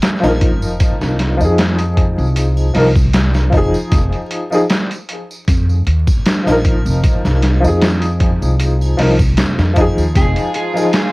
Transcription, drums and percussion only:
0.02 snare, closed hi-hat, tambourine
0.23 snare, tambourine, triangle
0.41 kick, closed hi-hat
0.62 tambourine
0.80 kick, closed hi-hat, tambourine
1.01 snare, tambourine
1.19 snare, closed hi-hat
1.40 tambourine
1.58 snare, closed hi-hat, tambourine
1.78 closed hi-hat, tambourine
1.97 kick, closed hi-hat
2.19 tambourine
2.36 closed hi-hat, tambourine
2.57 tambourine, triangle
2.75 snare, open hi-hat
2.96 kick, tambourine
3.13 snare, closed hi-hat, tambourine
3.34 snare, tambourine
3.52 kick, closed hi-hat, triangle
3.74 tambourine
3.92 kick, closed hi-hat, tambourine
4.13 closed hi-hat, tambourine
4.31 closed hi-hat
4.52 tambourine
4.70 snare, closed hi-hat, tambourine
4.91 closed hi-hat, tambourine
5.09 closed hi-hat
5.31 tambourine
5.48 kick, closed hi-hat, tambourine
5.69 tambourine
5.87 closed hi-hat
6.07 kick, tambourine, triangle
6.26 snare, closed hi-hat, tambourine
6.47 snare, tambourine, triangle
6.65 kick, closed hi-hat
6.86 tambourine
7.03 kick, closed hi-hat, tambourine
7.25 snare, tambourine, triangle
7.42 snare, closed hi-hat
7.64 tambourine
7.82 snare, closed hi-hat, tambourine
8.02 closed hi-hat, tambourine
8.20 kick, closed hi-hat
8.42 tambourine
8.60 closed hi-hat, tambourine
8.81 tambourine, triangle
8.99 snare, open hi-hat
9.19 kick, tambourine
9.37 snare, closed hi-hat, tambourine
9.59 snare, tambourine
9.76 kick, closed hi-hat, triangle
9.98 tambourine
10.15 kick, closed hi-hat, tambourine
10.36 closed hi-hat, tambourine
10.54 closed hi-hat
10.77 tambourine
10.93 snare, closed hi-hat, tambourine

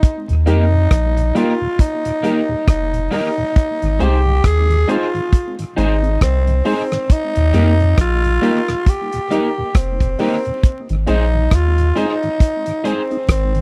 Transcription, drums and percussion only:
0.03 kick, closed hi-hat
0.29 closed hi-hat
0.47 closed hi-hat
0.91 kick, cross-stick, closed hi-hat
1.17 closed hi-hat
1.36 closed hi-hat
1.79 kick, closed hi-hat
2.05 closed hi-hat
2.24 closed hi-hat
2.68 kick, cross-stick, closed hi-hat
2.94 closed hi-hat
3.12 open hi-hat
3.56 kick, closed hi-hat
3.82 closed hi-hat
4.00 closed hi-hat
4.44 kick, cross-stick, closed hi-hat
4.70 closed hi-hat
4.89 closed hi-hat
5.15 closed hi-hat
5.33 kick, closed hi-hat
5.59 closed hi-hat
5.78 closed hi-hat
6.04 closed hi-hat
6.21 kick, cross-stick, closed hi-hat
6.47 closed hi-hat
6.65 open hi-hat
6.92 cross-stick, closed hi-hat
7.10 kick, closed hi-hat
7.36 closed hi-hat
7.54 closed hi-hat
7.80 closed hi-hat
7.98 kick, cross-stick, closed hi-hat
8.24 closed hi-hat
8.43 closed hi-hat
8.68 cross-stick, closed hi-hat
8.86 kick, closed hi-hat
9.13 closed hi-hat
9.31 closed hi-hat
9.75 kick, cross-stick, closed hi-hat
10.00 kick, closed hi-hat
10.19 open hi-hat
10.45 closed hi-hat
10.63 kick, closed hi-hat
10.89 closed hi-hat
11.07 closed hi-hat
11.51 kick, cross-stick, closed hi-hat
11.78 closed hi-hat
11.96 closed hi-hat
12.23 closed hi-hat
12.40 kick, closed hi-hat
12.66 closed hi-hat
12.85 closed hi-hat
13.11 closed hi-hat
13.29 kick, cross-stick, closed hi-hat
13.55 closed hi-hat

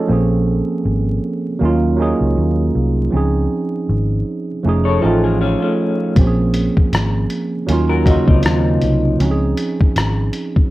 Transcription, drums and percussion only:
6.16 kick, closed hi-hat
6.54 closed hi-hat
6.77 kick
6.93 cross-stick, closed hi-hat
7.30 closed hi-hat
7.69 closed hi-hat
8.06 kick, closed hi-hat
8.28 kick
8.43 cross-stick, closed hi-hat
8.82 closed hi-hat
9.20 closed hi-hat
9.57 closed hi-hat
9.81 kick
9.96 cross-stick, closed hi-hat
10.33 closed hi-hat
10.56 kick

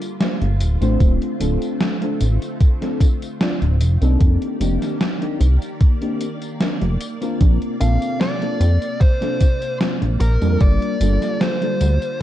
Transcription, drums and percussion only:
0.02 closed hi-hat, tambourine
0.21 snare, closed hi-hat, tambourine
0.42 closed hi-hat
0.61 closed hi-hat, tambourine
0.82 closed hi-hat, tambourine
1.00 kick, closed hi-hat, tambourine
1.22 closed hi-hat
1.41 closed hi-hat, tambourine
1.62 closed hi-hat, tambourine
1.81 snare, closed hi-hat, tambourine
2.02 closed hi-hat
2.21 closed hi-hat, tambourine
2.42 closed hi-hat, tambourine
2.60 kick, closed hi-hat, tambourine
2.82 snare, closed hi-hat
3.00 kick, closed hi-hat, tambourine
3.22 closed hi-hat, tambourine
3.41 snare, closed hi-hat, tambourine
3.62 closed hi-hat
3.81 closed hi-hat, tambourine
4.02 closed hi-hat, tambourine
4.21 kick, closed hi-hat, tambourine
4.42 closed hi-hat
4.61 closed hi-hat, tambourine
4.82 snare, closed hi-hat, tambourine
5.01 snare, closed hi-hat, tambourine
5.22 closed hi-hat
5.41 closed hi-hat, tambourine
5.62 closed hi-hat, tambourine
5.81 kick, closed hi-hat, tambourine
6.02 closed hi-hat
6.21 closed hi-hat, tambourine
6.42 closed hi-hat, tambourine
6.61 snare, closed hi-hat, tambourine
6.82 closed hi-hat
7.01 closed hi-hat, tambourine
7.22 closed hi-hat, tambourine
7.41 kick, closed hi-hat, tambourine
7.62 closed hi-hat
7.81 closed hi-hat, tambourine
8.02 closed hi-hat, tambourine
8.21 snare, closed hi-hat, tambourine
8.42 closed hi-hat
8.61 closed hi-hat, tambourine
8.82 closed hi-hat, tambourine
9.01 kick, closed hi-hat, tambourine
9.22 snare, closed hi-hat
9.41 kick, closed hi-hat, tambourine
9.62 closed hi-hat, tambourine
9.81 snare, closed hi-hat, tambourine
10.02 closed hi-hat
10.20 closed hi-hat, tambourine
10.42 closed hi-hat, tambourine
10.61 kick, closed hi-hat, tambourine
10.82 closed hi-hat
11.01 closed hi-hat, tambourine
11.22 snare, closed hi-hat, tambourine
11.41 snare, closed hi-hat, tambourine
11.62 closed hi-hat
11.81 closed hi-hat, tambourine
12.02 closed hi-hat, tambourine

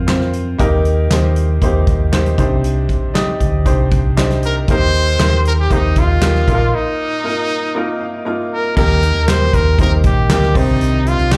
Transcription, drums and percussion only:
0.08 snare, clap, closed hi-hat
0.21 snare
0.33 closed hi-hat
0.59 kick, closed hi-hat
0.85 closed hi-hat
1.11 snare, clap, closed hi-hat
1.36 closed hi-hat
1.62 kick, closed hi-hat
1.87 kick, closed hi-hat
2.13 snare, clap, closed hi-hat
2.26 closed hi-hat
2.38 kick, closed hi-hat
2.64 closed hi-hat
2.89 kick, closed hi-hat
3.15 snare, clap, closed hi-hat
3.40 kick, closed hi-hat
3.66 kick, closed hi-hat
3.91 kick, closed hi-hat
4.17 snare, clap, closed hi-hat
4.30 snare, closed hi-hat
4.43 closed hi-hat
4.68 kick, closed hi-hat
4.94 closed hi-hat
5.07 closed hi-hat
5.20 snare, clap, closed hi-hat
5.45 closed hi-hat
5.70 kick, closed hi-hat
5.96 kick, closed hi-hat
6.22 snare, clap, closed hi-hat
6.35 snare
6.48 kick, closed hi-hat
8.77 kick, crash
9.03 closed hi-hat
9.28 snare, clap, closed hi-hat
9.53 kick, closed hi-hat
9.79 kick, closed hi-hat
10.04 kick, closed hi-hat
10.30 snare, clap, closed hi-hat
10.43 snare
10.55 kick, open hi-hat
10.81 closed hi-hat
11.06 closed hi-hat
11.19 closed hi-hat
11.31 snare, clap, closed hi-hat

